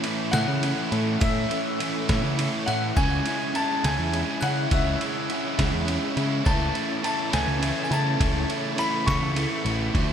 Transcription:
Already playing: overdriven electric guitar A2, string machine C#4 E4 A4 E5
0.02 overdriven electric guitar E3 A3 C#4, ride
0.07 overdriven electric guitar E4
0.32 picked electric bass A2, overdriven electric guitar C#4 E4, upright piano F#5, glockenspiel F#6, snare, ride
0.36 overdriven electric guitar A3
0.48 picked electric bass C#3
0.61 overdriven electric guitar E3 A3 C#4, ride
0.66 overdriven electric guitar E4
0.89 picked electric bass A2, overdriven electric guitar A3 C#4 E4, ride
1.20 overdriven electric guitar A2 E3 A3 C#4 E4, picked electric bass A2, upright piano E5, string machine F#5, glockenspiel E6, kick, ride
1.49 overdriven electric guitar A3 C#4 E4, ride
1.79 overdriven electric guitar E3 A3 C#4 E4, ride
2.08 picked electric bass A2, overdriven electric guitar A3 C#4 E4, kick, snare, ride
2.24 picked electric bass C#3
2.38 overdriven electric guitar E3 A3 C#4 E4, ride
2.66 picked electric bass A2, overdriven electric guitar C#4 E4, upright piano F#5, glockenspiel F#6, ride
2.72 overdriven electric guitar A3
2.96 picked electric bass C#2, overdriven electric guitar C#3 G#3 C#4 E4, string machine C#4 G#4 E5, upright piano G#5, glockenspiel G#6, kick, crash
3.26 overdriven electric guitar C#4 E4, ride
3.30 overdriven electric guitar G#3
3.53 overdriven electric guitar C#3 G#3 C#4 E4, upright piano A5, glockenspiel A6, ride
3.84 picked electric bass C#2, overdriven electric guitar G#3 C#4 E4, upright piano G#5, glockenspiel G#6, snare, ride
3.99 picked electric bass E2
4.12 overdriven electric guitar C#3 G#3 C#4, ride
4.16 overdriven electric guitar E4
4.41 picked electric bass C#3, overdriven electric guitar C#4 E4, upright piano F#5, glockenspiel F#6, ride
4.46 overdriven electric guitar G#3
4.71 picked electric bass C#2, overdriven electric guitar C#3 G#3 C#4 E4, upright piano E5, string machine F#5, glockenspiel E6, kick, ride
5.00 overdriven electric guitar G#3 C#4 E4, ride
5.29 overdriven electric guitar C#3 G#3 C#4 E4, ride
5.57 picked electric bass C#2, overdriven electric guitar C#4 E4, kick, snare, ride
5.62 overdriven electric guitar G#3
5.73 picked electric bass E2
5.86 overdriven electric guitar C#3 G#3 C#4 E4, ride
6.16 picked electric bass C#3, overdriven electric guitar G#3 C#4 E4, ride
6.44 picked electric bass C#2, overdriven electric guitar C#3 E3 A3 E4, string machine A4 E5, upright piano A5, glockenspiel A6, kick, crash
6.74 overdriven electric guitar E3 A3 E4, ride
7.02 overdriven electric guitar C#3 E3 A3 E4, upright piano A5, ride
7.06 glockenspiel A6
7.30 picked electric bass C#2, overdriven electric guitar E3 A3 E4, upright piano G#5, glockenspiel G#6, snare, ride
7.47 picked electric bass C#2
7.60 overdriven electric guitar C#3 E3 A3 E4, ride
7.84 upright piano G#5, glockenspiel G#6
7.90 picked electric bass C#3, overdriven electric guitar E3 A3 E4, upright piano A5, glockenspiel A6, ride
8.17 picked electric bass C#2, overdriven electric guitar C#3 E3 A3 E4, string machine F#5, kick, ride
8.48 overdriven electric guitar E3 A3 E4, ride
8.76 overdriven electric guitar C#3 E3 A3 E4, upright piano B5, ride
8.80 glockenspiel B6
9.05 picked electric bass C#2, overdriven electric guitar A3 E4, upright piano C#6, kick, snare, ride
9.09 overdriven electric guitar E3, glockenspiel C#7
9.21 picked electric bass C#2
9.35 overdriven electric guitar C#3 E3 A3 E4, ride
9.65 picked electric bass A1, overdriven electric guitar E3 A3 E4, ride
9.93 picked electric bass D2, overdriven electric guitar D3 F3 A3 D4, string machine D4 F4 F5, kick, crash

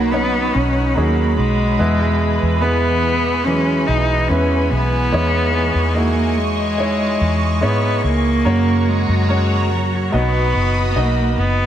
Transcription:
Already playing: fingered electric bass B1, grand piano B2 F#3 C#4 D#4 B4 C#5, cello A#3, analog synth pad D#4 C#5 F#5 B5
0.12 grand piano F#3 C#4 D#4 C#5, cello B3
0.53 fingered electric bass B1, cello C#4
0.95 fingered electric bass D#2, grand piano F#3 C#4 D#4 G#4, cello A#3
1.36 fingered electric bass B1, cello G#3
1.79 fingered electric bass E2, grand piano B2 G#3 B3 E4 B4, analog synth pad E3 B4 G#5
2.43 fingered electric bass E2
2.61 grand piano G#3 B3 E4 B4, cello B3
3.44 grand piano E3 F#3 B3 B4, cello C#4
3.52 grand piano G#3
3.87 fingered electric bass B1, cello D#4
4.28 fingered electric bass E2, grand piano G#3 B3 E4 B4, cello C#4
4.70 fingered electric bass B1, cello B3
5.11 fingered electric bass E2, grand piano E3 G#3 D#4 E4 C#5, analog synth pad D#5 C#6
5.75 fingered electric bass E2
5.94 grand piano G#3 D#4 E4 F#4, cello A#3
6.37 cello G#3
6.78 grand piano G#3 D#4 E4 C#5
7.21 fingered electric bass E2
7.61 fingered electric bass G#2, grand piano G#3 D#4 E4 C#5, cello B3
8.04 fingered electric bass C#2, cello A#3
8.45 fingered electric bass F#2, grand piano C#3 A#3 C#4 F#4 C#5, analog synth pad F#4 C#5 A#5
8.88 cello G#3
9.09 fingered electric bass F#2
9.29 grand piano A#3 C#4 F#4 C#5
9.72 cello F#3
10.11 fingered electric bass B1, grand piano B2 F#3 B3 D#4 F#4 D#5, cello B3, analog synth pad F#4 D#5 B5 D#6
10.55 fingered electric bass F#1
10.91 cello B3
10.96 fingered electric bass B1, cello A#3, grand piano D#4 F#4 D#5
11.37 fingered electric bass F#1, cello B3

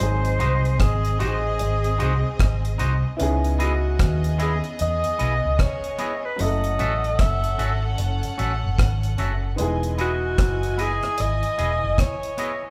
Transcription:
Already playing: grand piano F#3, alto saxophone C5
0.00 fingered electric bass G#1, grand piano G#3 C4 D#4 G#4, string section C4 G#4 D#5, closed hi-hat
0.25 closed hi-hat
0.39 fingered electric bass C2, clean electric guitar D#4 F#4 C5 D#5, closed hi-hat
0.65 closed hi-hat
0.80 fingered electric bass G#1, alto saxophone G#4, kick, cross-stick, closed hi-hat
1.05 closed hi-hat
1.19 fingered electric bass A1, clean electric guitar D#4 F#4 C5 D#5, alto saxophone G#4, closed hi-hat
1.44 muted clean electric guitar stroke
1.59 fingered electric bass G#1, closed hi-hat
1.84 closed hi-hat
1.98 fingered electric bass C2, clean electric guitar D#4 F#4 C5 D#5, closed hi-hat
2.40 fingered electric bass G#1, kick, cross-stick, closed hi-hat
2.65 closed hi-hat
2.78 fingered electric bass C2, clean electric guitar D#4 F#4 C5 D#5, closed hi-hat
3.03 muted clean electric guitar stroke
3.17 grand piano B3 C#4 E4, string section B3 G#4 D#5, closed hi-hat
3.21 fingered electric bass C#2, grand piano D#4 G#4
3.44 closed hi-hat
3.59 clean electric guitar B3 E4 G#4 D#5, alto saxophone F#4, closed hi-hat
3.99 fingered electric bass D#2, kick, cross-stick, closed hi-hat
4.24 closed hi-hat
4.38 clean electric guitar B3 E4 G#4 D#5, closed hi-hat
4.42 alto saxophone G#4
4.64 muted clean electric guitar stroke, closed hi-hat
4.79 fingered electric bass E2, alto saxophone D#5, closed hi-hat
5.04 closed hi-hat
5.19 fingered electric bass B1, clean electric guitar B3 E4 G#4 D#5, closed hi-hat
5.45 fingered electric bass C#2
5.59 alto saxophone C#5, kick, cross-stick, closed hi-hat
5.84 closed hi-hat
5.98 clean electric guitar B3 E4 G#4 D#5, closed hi-hat
6.23 alto saxophone B4, muted clean electric guitar stroke
6.36 fingered electric bass F#1, grand piano F#3 A3 C#4, string section C#4 A4 F#5, closed hi-hat
6.41 grand piano E4 A4, alto saxophone D#5
6.64 closed hi-hat
6.79 fingered electric bass A1, clean electric guitar C#4 F#4 A4 E5, closed hi-hat
7.04 closed hi-hat
7.19 fingered electric bass F#1, alto saxophone E5, kick, cross-stick, closed hi-hat
7.44 closed hi-hat
7.58 fingered electric bass G#1, clean electric guitar C#4 F#4 A4 E5, closed hi-hat
7.83 muted clean electric guitar stroke
7.98 fingered electric bass F#1, closed hi-hat
8.23 closed hi-hat
8.38 fingered electric bass A1, clean electric guitar C#4 F#4 A4 E5, closed hi-hat
8.64 fingered electric bass F#1
8.79 fingered electric bass G#1, kick, cross-stick, closed hi-hat
9.03 closed hi-hat
9.18 fingered electric bass F#1, clean electric guitar C#4 F#4 A4 E5, closed hi-hat
9.43 muted clean electric guitar stroke
9.56 fingered electric bass E1, grand piano E3 G#3 B3, string section E4 D#5 G#5, closed hi-hat
9.60 grand piano D#4 G#4
9.83 closed hi-hat
9.98 clean electric guitar B3 E4 G#4 D#5, alto saxophone F#4, closed hi-hat
10.38 fingered electric bass F#1, kick, cross-stick, closed hi-hat
10.63 closed hi-hat
10.78 clean electric guitar B3 E4 G#4 D#5, alto saxophone G#4, closed hi-hat
11.02 muted clean electric guitar stroke, cross-stick, closed hi-hat
11.18 fingered electric bass G#1, alto saxophone D#5, closed hi-hat
11.43 closed hi-hat
11.58 fingered electric bass E1, clean electric guitar B3 E4 G#4 D#5, closed hi-hat
11.84 fingered electric bass F#1
11.98 alto saxophone C#5, kick, cross-stick, closed hi-hat
12.23 closed hi-hat
12.37 clean electric guitar B3 E4 G#4 D#5, closed hi-hat
12.63 muted clean electric guitar stroke

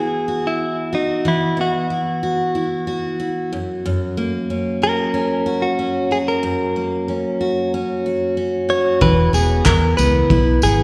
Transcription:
Already playing: steel-string acoustic guitar E3 B3 E4 F#4, clean electric guitar G#4
0.28 steel-string acoustic guitar F#4
0.47 clean electric guitar E4
0.93 clean electric guitar D#4, steel-string acoustic guitar F#4
1.25 steel-string acoustic guitar E3, clean electric guitar E4
1.57 steel-string acoustic guitar B3, clean electric guitar F#4
1.90 steel-string acoustic guitar E4
2.23 steel-string acoustic guitar F#4
2.55 steel-string acoustic guitar E4
2.87 steel-string acoustic guitar F#4
3.20 steel-string acoustic guitar E4
3.53 steel-string acoustic guitar F#2
3.86 steel-string acoustic guitar F#2
4.17 steel-string acoustic guitar A#3
4.50 steel-string acoustic guitar C#4
4.82 steel-string acoustic guitar F#4, clean electric guitar A#4
5.14 steel-string acoustic guitar C#4
5.46 steel-string acoustic guitar F#4
5.62 clean electric guitar F#4
5.79 steel-string acoustic guitar C#4
6.11 steel-string acoustic guitar F#4, clean electric guitar G#4
6.28 clean electric guitar A#4
6.43 steel-string acoustic guitar F#2
6.76 steel-string acoustic guitar A#3
7.08 steel-string acoustic guitar C#4
7.41 steel-string acoustic guitar F#4
7.74 steel-string acoustic guitar C#4
8.06 steel-string acoustic guitar F#4
8.37 steel-string acoustic guitar C#4
8.69 steel-string acoustic guitar F#4, clean electric guitar C#5
9.01 fingered electric bass E1, steel-string acoustic guitar E3, clean electric guitar B4, kick
9.33 fingered electric bass E1, steel-string acoustic guitar B3, clean electric guitar G#4, tambourine
9.65 fingered electric bass E2, steel-string acoustic guitar E4, clean electric guitar A#4, kick, clap
9.97 fingered electric bass C#2, steel-string acoustic guitar B3, clean electric guitar B4, tambourine
10.30 fingered electric bass B1, steel-string acoustic guitar E4, kick
10.62 fingered electric bass G#1, steel-string acoustic guitar B3, clean electric guitar G#4, tambourine

